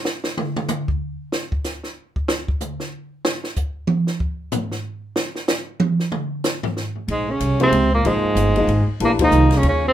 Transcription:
0.05 snare
0.24 snare
0.37 mid tom
0.56 mid tom
0.68 hi-hat pedal, mid tom
0.88 kick
1.32 snare
1.52 kick
1.64 snare, hi-hat pedal
1.84 snare
2.16 kick
2.28 snare
2.48 kick
2.60 hi-hat pedal, mid tom
2.80 snare
3.25 snare
3.44 snare
3.56 kick, hi-hat pedal
3.87 high tom
4.07 snare
4.20 kick
4.52 floor tom, hi-hat pedal
4.71 snare
5.16 snare
5.35 snare
5.48 snare, hi-hat pedal
5.80 high tom
6.00 snare
6.12 mid tom
6.44 snare, hi-hat pedal
6.63 floor tom
6.77 snare
6.95 floor tom
7.08 upright bass A#1, trombone G#2, tenor saxophone G#3, ride
7.29 trombone C#3, tenor saxophone C#4
7.40 upright bass C2, hi-hat pedal, ride
7.60 trombone C3, upright piano F3 A#3 D#4 G#4 C5, tenor saxophone C4, ride
7.72 upright bass C#2, ride
7.94 trombone A#2, tenor saxophone A#3
8.05 upright bass A#1, trombone G#2, upright piano F3 A#3 D#4 G#4 C5, tenor saxophone G#3, ride
8.24 muted upright bass stroke
8.35 upright bass G1, hi-hat pedal, ride
8.56 upright piano F3 A#3 D#4 G#4 D#5, ride
8.67 upright bass G#1, ride
9.00 upright bass A#1, trombone A#2, upright piano E3 A3 D4 G4 B4, ride
9.04 tenor saxophone A#3
9.19 trombone D#3, upright piano F3 A#3 D#4 G#4 C5, kick, ride
9.24 tenor saxophone D#4
9.31 upright bass C2, hi-hat pedal
9.50 snare, ride
9.55 trombone C#3, tenor saxophone C#4
9.63 upright bass D#2, trombone C#3, ride
9.68 tenor saxophone C#4
9.86 trombone C3, tenor saxophone C4

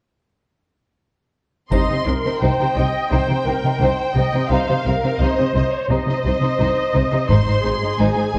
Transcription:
1.71 double bass section C2, cello section C3, violin section D#4 C5 C6, viola section D#5, taiko, triangle
1.89 cello section C3, violin section D#4 C5
2.06 double bass section C2, cello section C3, violin section D#4 C5, viola section A#4
2.25 cello section C3, violin section D#4 C5
2.41 double bass section C2, cello section C3, violin section D#4 C5 G5, viola section C5
2.59 cello section C3, violin section D#4 C5
2.75 double bass section C2, cello section C3, violin section D#4 C5, viola section D#5
3.09 double bass section C2, cello section C3, violin section D#4 C5 G5, viola section C5
3.29 cello section C3, violin section D#4 C5
3.45 double bass section C2, cello section C3, violin section D#4 C5, viola section A#4
3.63 cello section C3, violin section D#4 C5
3.80 double bass section C2, cello section C3, violin section D#4 C5, viola section C5
4.15 double bass section C2, cello section C3, violin section D#4 C5, viola section D#5
4.34 cello section C3, violin section D#4 C5
4.49 double bass section C2, cello section C3, violin section D#4 C5 F5, viola section C5
4.68 cello section C3, violin section D#4 C5
4.85 double bass section C2, cello section C3, violin section D#4 C5, viola section A#4
5.03 cello section C3, violin section D#4 C5
5.18 double bass section C2, cello section C3, violin section D#4 C5 D#5, viola section C5
5.38 cello section C3, violin section D#4 C5
5.55 double bass section C2, cello section C3, violin section D#4 C5 D#5
5.72 violin section C#5
5.90 double bass section C2, cello section C3, violin section D#4 C5, viola section D#5
6.07 cello section C3, violin section D#4 C5
6.25 double bass section C2, cello section C3, violin section D#4 C5, viola section D#5
6.42 cello section C3, violin section D#4 C5
6.59 double bass section C2, cello section C3, violin section D#4 C5
6.94 double bass section C2, cello section C3, violin section D#4 C5
7.12 cello section C3, violin section D#4 C5
7.29 double bass section G#1, cello section G#2, violin section D#4 C5 C6, viola section C5, taiko
7.47 cello section G#2, violin section D#4 C5
7.64 double bass section G#1, cello section G#2, violin section D#4 C5, viola section G#4
7.82 cello section G#2, violin section D#4 C5
7.98 double bass section G#1, cello section G#2, violin section D#4 C5 G#5
8.16 cello section G#2, violin section D#4 C5
8.34 double bass section G#1, cello section G#2, violin section D#4 C5, taiko

